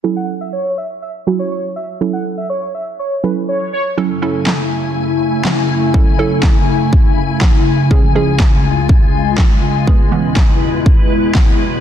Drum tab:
CP |--------|--------|--x---x-|--x---x-|
SD |--------|--------|--o---o-|--o---o-|
BD |--------|--------|--------|o-o-o-o-|

CP |--x---x-|--x---x-|
SD |--o---o-|--o---o-|
BD |o-o-o-o-|o-o-o-o-|